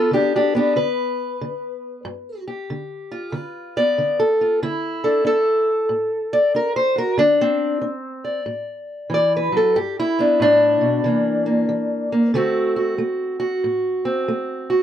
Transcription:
Already playing: B3 F4 A4
0.11 D3 D4 G4
0.36 D4 G4
0.55 B3 D4 G4
0.76 D3 B4
1.41 D3
2.05 G2
2.48 G4
2.70 D3
3.11 F4
3.32 D3 B4
3.77 B3 D5
3.98 D3
4.20 A4
4.41 F4
4.63 D3 E4
5.04 D4 A4
5.25 D4 A4
5.89 A2
6.33 D5
6.55 D4 A#4
6.76 C5
6.96 F#4 A#4
7.18 D3 D4
7.41 C4
7.82 D4
8.25 D5
8.46 A2
9.10 E3
9.14 D5
9.37 B4
9.52 F#3
9.57 A4
9.76 G2 G4
10.00 E4
10.19 B3 D4
10.40 A2 D4
10.81 B2
11.04 C3 E3 A#3
11.46 A#3
11.69 E3
12.12 A#3
12.34 D3 A3 C4 F#4
12.76 F#4
12.98 A3
13.40 F#4
13.64 A2
14.05 C4
14.28 A3
14.70 F#4

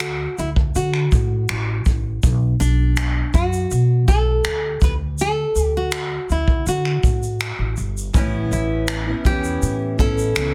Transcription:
Already playing: D2 F#4
0.00 finger snap, shaker
0.38 D2 E4, shaker
0.56 kick
0.75 D3 F#4, shaker
0.94 finger snap
1.12 A2, kick, shaker
1.49 A1, finger snap, shaker
1.86 A1, kick, shaker
2.23 B1, kick, shaker
2.60 B1 D4, shaker
2.97 finger snap, shaker
3.34 F#2 F#4, kick, shaker
3.53 shaker
3.71 B2, shaker
4.08 B1 A4, kick, shaker
4.45 D2, finger snap, shaker
4.64 G4
4.81 D2 B4, kick, shaker
5.18 A4, shaker
5.55 D2, shaker
5.65 G4
5.77 F#4
5.92 finger snap, shaker
6.29 D2 E4, shaker
6.48 kick
6.66 D3 F#4, shaker
6.85 finger snap
7.03 A2, kick, shaker
7.23 shaker
7.41 finger snap, shaker
7.59 A1
7.77 G1, shaker
7.97 shaker
8.13 A1 A2 E3 B3 C#4 E4, kick, shaker
8.51 A1 E4, shaker
8.88 finger snap, shaker
9.06 B3 C#4 E4
9.25 E2 E3 B3 C#4 E4 G4, kick, shaker
9.44 shaker
9.62 A2, shaker
9.98 A1 E3 B3 C#4 E4 A4, kick, shaker
10.18 shaker
10.35 C#2 E3 B3 C#4 E4, finger snap, shaker

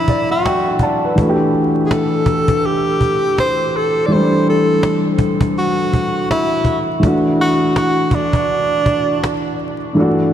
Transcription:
Already playing: G2 E3 F#3 A3 D4 E4
0.08 D5, cajon bass
0.29 F#4 F#5, cajon slap
0.46 G5, cajon slap
0.67 F#5, cajon slap
0.79 D5 A5, cajon bass
1.02 B4, cajon slap
1.16 E3 A3, cajon bass
1.20 D4 F#4
1.29 G4
1.41 cajon slap
1.55 cajon slap
1.86 G#4
1.91 A4, cajon slap
2.13 cajon slap
2.26 cajon bass
2.48 cajon bass
2.65 G4, cajon slap
2.87 cajon slap
3.01 cajon bass
3.21 cajon slap
3.38 C5, cajon slap
3.60 cajon slap
3.75 A4, cajon slap
3.95 cajon slap
4.06 E3 D5
4.10 A3 D4 C5, cajon slap
4.15 G3
4.33 cajon slap
4.47 A4, cajon slap
4.83 cajon slap
5.05 cajon slap
5.19 cajon bass
5.41 cajon bass
5.57 F#4, cajon slap
5.80 cajon slap
5.93 cajon bass
6.14 cajon slap
6.31 E4, cajon slap
6.52 cajon slap
6.65 cajon bass
6.88 cajon slap
7.00 E3 A3, cajon bass
7.05 D4 F#4
7.26 cajon slap
7.40 F#4, cajon slap
7.76 F#4, cajon slap
7.98 cajon slap
8.11 D4, cajon bass
8.33 cajon bass
8.50 cajon slap
8.72 cajon slap
8.86 cajon bass
9.07 cajon slap
9.24 cajon slap
9.45 cajon slap
9.60 cajon slap
9.80 cajon slap
9.93 G2 E3 A3, cajon slap
9.98 D4 F#4
10.19 cajon slap

